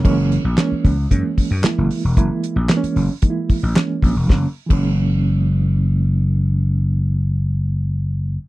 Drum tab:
CC |x---------------|----------------|---x------------|----------------|
HH |--x-x-o-x-o-x-o-|x-x-xxo-x-o-x-o-|----------------|----------------|
CP |----x-------x---|----x-------x---|----------------|----------------|
SD |----o-------o---|----o-------o---|o---------------|----------------|
BD |o-----o-o-o-----|o-------o-o---o-|o--o------------|----------------|